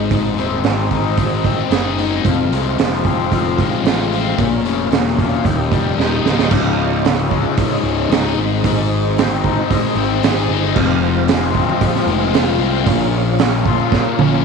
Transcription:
Already playing: picked electric bass G#1, distorted electric guitar G#2 G#3, tonewheel organ G#3 C4 D#4 C5 D#5
0.11 distorted electric guitar G#2, kick, open hi-hat
0.37 picked electric bass D#1, distorted electric guitar C4, open hi-hat
0.64 picked electric bass G#1, distorted electric guitar G#3, snare, open hi-hat
0.91 distorted electric guitar D#4, kick, open hi-hat
1.17 distorted electric guitar G#3, kick, open hi-hat
1.44 distorted electric guitar C4, kick, open hi-hat
1.71 picked electric bass F#1, distorted electric guitar G#4, snare, open hi-hat
1.98 distorted electric guitar D#4, open hi-hat
2.23 picked electric bass F1, distorted electric guitar F2, tonewheel organ G#3 F4 F5, kick, open hi-hat
2.52 picked electric bass C2, distorted electric guitar G#3, open hi-hat
2.79 picked electric bass F1, distorted electric guitar F3, snare, open hi-hat
2.93 snare
3.05 distorted electric guitar C4, kick, open hi-hat
3.32 distorted electric guitar F3, kick, open hi-hat
3.58 distorted electric guitar G#3, kick, open hi-hat
3.83 picked electric bass A1, distorted electric guitar F4, snare, open hi-hat
4.12 distorted electric guitar C4, open hi-hat
4.38 picked electric bass A#1, distorted electric guitar A#2, tonewheel organ A#3 C#4 C#5, kick, open hi-hat
4.64 picked electric bass F1, distorted electric guitar C#4, open hi-hat
4.91 picked electric bass E1, distorted electric guitar A#3, snare, open hi-hat
5.07 snare
5.18 distorted electric guitar F4, kick, open hi-hat
5.44 picked electric bass D#1, distorted electric guitar D#2, tonewheel organ D#4 G4 D#5 G5, kick, open hi-hat
5.71 picked electric bass F1, distorted electric guitar G3, kick, open hi-hat
5.97 picked electric bass D#1, distorted electric guitar D#4, snare
6.23 picked electric bass C#1, distorted electric guitar A#3, snare
6.39 snare
6.50 picked electric bass C#1, distorted electric guitar C#2, tonewheel organ G#3 D#4 F4 C#5 D#5, kick, crash
7.05 distorted electric guitar C#3, snare, open hi-hat
7.31 distorted electric guitar G#3, kick
7.57 distorted electric guitar G#2, kick, open hi-hat
7.83 picked electric bass C#1, distorted electric guitar C#3
8.10 picked electric bass C#1, distorted electric guitar D#4, snare, open hi-hat
8.37 picked electric bass G#1, distorted electric guitar G#2, tonewheel organ C4 C5
8.64 picked electric bass G#1, distorted electric guitar G#2, kick, open hi-hat
9.18 distorted electric guitar C4, snare, open hi-hat
9.44 distorted electric guitar D#4, kick
9.71 distorted electric guitar G#3, kick, open hi-hat
9.95 picked electric bass G#1, distorted electric guitar C4
10.23 picked electric bass G#1, distorted electric guitar G#4, snare, open hi-hat
10.49 picked electric bass G1, distorted electric guitar D#4
10.74 picked electric bass F1, distorted electric guitar F2, tonewheel organ F4 F5, kick, crash
11.28 distorted electric guitar G#3, snare, open hi-hat
11.55 distorted electric guitar C4, kick
11.81 distorted electric guitar F3, kick, open hi-hat
11.96 snare
12.07 picked electric bass F1, distorted electric guitar G#3
12.33 picked electric bass F1, distorted electric guitar F4, snare, open hi-hat
12.59 picked electric bass C2, distorted electric guitar C4
12.86 picked electric bass A#1, distorted electric guitar A#2, tonewheel organ A#3 C#4 C#5, kick, open hi-hat
13.39 distorted electric guitar C#4, snare, open hi-hat
13.66 distorted electric guitar F4, kick
13.92 distorted electric guitar A#3, kick, snare
14.19 picked electric bass A#1, distorted electric guitar C#4, mid tom

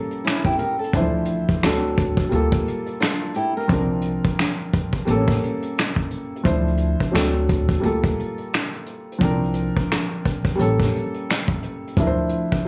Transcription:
Already playing: upright piano G3 A#3 C#4 A4
0.11 closed hi-hat
0.24 nylon-string guitar C#4 E4, finger snap, snare, closed hi-hat
0.45 nylon-string guitar E4 G4, kick
0.59 nylon-string guitar G4 A#4, closed hi-hat
0.79 nylon-string guitar A4
0.84 closed hi-hat
0.93 upright bass D2, upright piano E3 D4 E4 C5, kick, closed hi-hat
1.00 upright piano F3
1.25 closed hi-hat
1.49 kick, closed hi-hat
1.63 upright bass D2, upright piano F#3 C4 D4 A4, finger snap, snare, closed hi-hat
1.84 closed hi-hat
1.97 kick, closed hi-hat
2.17 kick, closed hi-hat
2.29 upright bass D2, upright piano G3 A#3, closed hi-hat
2.34 upright piano F4 A4
2.52 kick, closed hi-hat
2.68 closed hi-hat
2.86 closed hi-hat
3.00 nylon-string guitar D4 F4, finger snap, snare, closed hi-hat
3.22 closed hi-hat
3.34 nylon-string guitar E4 G4, closed hi-hat
3.57 nylon-string guitar G4 A#4, closed hi-hat
3.68 upright bass C2, upright piano F3 C4 D4, kick, closed hi-hat
3.73 upright piano A#4
4.01 closed hi-hat
4.25 kick, closed hi-hat
4.39 finger snap, snare, closed hi-hat
4.60 closed hi-hat
4.74 kick, closed hi-hat
4.93 kick, closed hi-hat
5.05 upright bass A1, upright piano G3 A#3 C4, closed hi-hat
5.11 upright piano A4
5.15 upright piano C#4
5.28 kick, snare
5.44 closed hi-hat
5.62 closed hi-hat
5.78 finger snap, snare, closed hi-hat
5.96 kick
6.11 closed hi-hat
6.36 closed hi-hat
6.44 upright bass D2, upright piano F3 D4 E4 C5, kick, closed hi-hat
6.68 closed hi-hat
6.77 closed hi-hat
7.00 kick, closed hi-hat
7.12 upright bass D2, upright piano F#3 C4 D4 A4, finger snap
7.16 snare, closed hi-hat
7.49 kick, closed hi-hat
7.69 kick, closed hi-hat
7.80 upright bass D2, upright piano G3 A#3 F4
7.84 upright piano A4, closed hi-hat
8.04 kick
8.19 closed hi-hat
8.38 closed hi-hat
8.53 finger snap, snare, closed hi-hat
8.74 closed hi-hat
8.86 closed hi-hat
9.12 closed hi-hat
9.19 upright bass C2, upright piano F3 C4 D4, kick, closed hi-hat
9.24 upright piano A#4
9.44 closed hi-hat
9.54 closed hi-hat
9.77 kick, closed hi-hat
9.92 finger snap, snare, closed hi-hat
10.13 closed hi-hat
10.25 kick, closed hi-hat
10.45 kick, closed hi-hat
10.55 upright bass A1, upright piano G3 A#3 C#4
10.60 upright piano A4, closed hi-hat
10.80 kick, snare, closed hi-hat
10.96 closed hi-hat
11.14 closed hi-hat
11.30 finger snap, snare, closed hi-hat
11.48 kick, closed hi-hat
11.62 closed hi-hat
11.87 closed hi-hat
11.97 upright bass D2, upright piano F3 D4 E4 A#4, kick, closed hi-hat
12.07 upright piano C5
12.29 closed hi-hat
12.52 kick, closed hi-hat

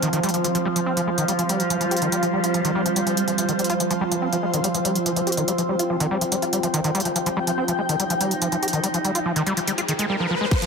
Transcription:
Already playing: synth drone F3 C4, ambient pad F4 C5 F5, downlifter
0.02 acid bass D#3, closed hi-hat
0.13 acid bass D#3, closed hi-hat
0.23 acid bass G3, closed hi-hat
0.29 closed hi-hat
0.34 acid bass F3, closed hi-hat
0.44 acid bass F3, synth drone G3, closed hi-hat
0.55 acid bass F3, closed hi-hat
0.65 acid bass G3
0.76 acid bass F3, closed hi-hat
0.86 acid bass C4
0.97 acid bass F3, closed hi-hat
1.07 acid bass G#3
1.18 acid bass D#3, closed hi-hat
1.28 acid bass G3, closed hi-hat
1.39 acid bass F3, closed hi-hat
1.49 acid bass G3, closed hi-hat
1.60 acid bass F3, closed hi-hat
1.70 acid bass F3, closed hi-hat
1.81 acid bass F3, closed hi-hat
1.91 acid bass G4, closed hi-hat
1.97 closed hi-hat
2.02 acid bass D#3, closed hi-hat
2.12 acid bass G3, closed hi-hat
2.23 acid bass F3, closed hi-hat
2.33 acid bass G3
2.44 acid bass F4, closed hi-hat
2.54 acid bass F3, closed hi-hat
2.65 acid bass D#3, closed hi-hat
2.75 acid bass G3
2.86 acid bass F3, closed hi-hat
2.96 acid bass G3, closed hi-hat
3.07 acid bass F3, closed hi-hat
3.17 acid bass G#3, closed hi-hat
3.28 acid bass F3, closed hi-hat
3.38 acid bass F3, closed hi-hat
3.49 acid bass D#3, closed hi-hat
3.59 acid bass G3, closed hi-hat
3.64 closed hi-hat
3.70 acid bass F4, closed hi-hat
3.80 acid bass F3, synth drone C4, closed hi-hat
3.91 acid bass F3, closed hi-hat
4.01 acid bass G3
4.12 acid bass F3, closed hi-hat
4.22 acid bass C4
4.33 acid bass F3, closed hi-hat
4.43 acid bass G#3
4.54 acid bass D#3, closed hi-hat
4.64 acid bass G3, closed hi-hat
4.74 acid bass F3, closed hi-hat
4.85 acid bass G3, closed hi-hat
4.95 acid bass F3, closed hi-hat
5.06 acid bass F3, closed hi-hat
5.16 acid bass F3, closed hi-hat
5.27 acid bass G4, closed hi-hat
5.32 closed hi-hat
5.37 acid bass D#3, closed hi-hat
5.48 acid bass G3, ambient pad G5, closed hi-hat
5.58 acid bass F3, closed hi-hat
5.69 acid bass G3
5.79 acid bass F4, closed hi-hat
5.90 acid bass F3
6.00 acid bass D#3, closed hi-hat
6.11 acid bass G3
6.21 acid bass F3, closed hi-hat
6.32 acid bass G3, closed hi-hat
6.42 acid bass F4, closed hi-hat
6.53 acid bass G3, closed hi-hat
6.63 acid bass F3, closed hi-hat
6.74 acid bass D#3, closed hi-hat
6.84 acid bass D#3, closed hi-hat
6.95 acid bass G3, closed hi-hat
7.00 closed hi-hat
7.05 acid bass F3, closed hi-hat
7.16 acid bass F3, synth drone D#4, closed hi-hat, riser
7.26 acid bass F3, closed hi-hat
7.37 acid bass G3
7.47 acid bass F3, closed hi-hat
7.58 acid bass C4
7.68 acid bass F3, closed hi-hat
7.79 acid bass G#3
7.89 acid bass D#3, closed hi-hat
8.00 acid bass G3, closed hi-hat
8.10 acid bass F3, closed hi-hat
8.21 acid bass G3, closed hi-hat
8.31 acid bass F3, closed hi-hat
8.42 acid bass F3, closed hi-hat
8.52 acid bass F3, closed hi-hat
8.63 acid bass G4, closed hi-hat
8.68 closed hi-hat
8.73 acid bass D#3, closed hi-hat
8.84 acid bass G3, closed hi-hat
8.94 acid bass F3, closed hi-hat
9.05 acid bass G3, closed hi-hat
9.15 acid bass F4, closed hi-hat
9.26 acid bass F3
9.36 acid bass D#3, closed hi-hat
9.47 acid bass G3, closed hi-hat
9.57 acid bass F3, closed hi-hat
9.68 acid bass G3, closed hi-hat
9.78 acid bass F4, closed hi-hat
9.88 acid bass D#3, closed hi-hat
9.99 acid bass G#3, closed hi-hat
10.10 acid bass G3
10.20 acid bass F3
10.30 acid bass F3
10.41 acid bass G#3
10.51 acid bass F3, synth drone F3 C4, kick, closed hi-hat, crash
10.62 acid bass F3, closed hi-hat

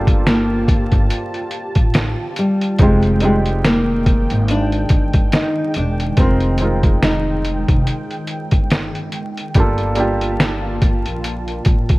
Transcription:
Already playing: upright bass G1, felt piano G3 A#3 D4 F4 A4 C5, nylon-string guitar D4, analog synth pad F4 G4 A5
0.07 kick, closed hi-hat
0.27 nylon-string guitar A#3, snare, closed hi-hat
0.68 kick, closed hi-hat
0.92 upright bass G1, kick, closed hi-hat
1.10 closed hi-hat
1.34 closed hi-hat
1.51 closed hi-hat
1.75 upright bass A1, kick, closed hi-hat
1.94 snare, closed hi-hat
2.36 nylon-string guitar G3, closed hi-hat
2.61 closed hi-hat
2.78 upright bass F1, analog synth pad D#3 G#3 G5, felt piano G#3 C4 D#4 F4, nylon-string guitar G#3, kick, closed hi-hat
2.83 felt piano G4
3.03 closed hi-hat
3.20 felt piano G3 C4 D#4 F4, nylon-string guitar G#3, closed hi-hat
3.25 felt piano G#3 G4
3.46 closed hi-hat
3.65 nylon-string guitar A#3, snare, closed hi-hat
4.06 kick, closed hi-hat
4.30 upright bass G#1, closed hi-hat
4.48 nylon-string guitar D4, closed hi-hat
4.72 closed hi-hat
4.89 upright bass G1, kick, closed hi-hat
5.14 kick, closed hi-hat
5.32 nylon-string guitar D#4, snare, closed hi-hat
5.74 upright bass E1, nylon-string guitar D4, closed hi-hat
6.00 closed hi-hat
6.16 upright bass F1, felt piano G#3 C4 D#4 F4, nylon-string guitar C4, kick, closed hi-hat
6.21 felt piano A#4
6.40 closed hi-hat
6.58 felt piano G#3 C4, closed hi-hat
6.62 felt piano D#4 F4 A#4
6.83 kick, closed hi-hat
7.03 nylon-string guitar D#4, snare, closed hi-hat
7.45 closed hi-hat
7.68 upright bass F1, kick, closed hi-hat
7.87 closed hi-hat
8.11 closed hi-hat
8.27 closed hi-hat
8.51 upright bass G1, kick, closed hi-hat
8.70 snare, closed hi-hat
8.95 closed hi-hat
9.12 closed hi-hat
9.37 closed hi-hat
9.54 upright bass G1, felt piano G3 A#3 D4, analog synth pad A#3 F4 A5, kick, closed hi-hat
9.58 felt piano F4 A4
9.78 closed hi-hat
9.95 felt piano G3 A#3 D4 F4, closed hi-hat
10.00 felt piano G4
10.21 closed hi-hat
10.40 snare, closed hi-hat
10.82 kick, closed hi-hat
11.06 upright bass A#1, closed hi-hat
11.24 closed hi-hat
11.48 closed hi-hat
11.65 upright bass A1, kick, closed hi-hat
11.89 kick, closed hi-hat

